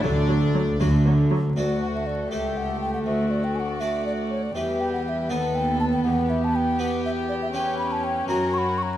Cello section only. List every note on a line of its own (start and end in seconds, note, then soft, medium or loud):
0.04 0.71 D3 medium
0.80 1.48 D3 medium
1.57 2.28 D2 medium
2.32 3.05 C#2 soft
3.07 4.52 D2 soft
4.56 5.28 E2 soft
5.30 6.05 D#2 medium
6.05 8.24 E2 soft
8.28 8.97 F#2 medium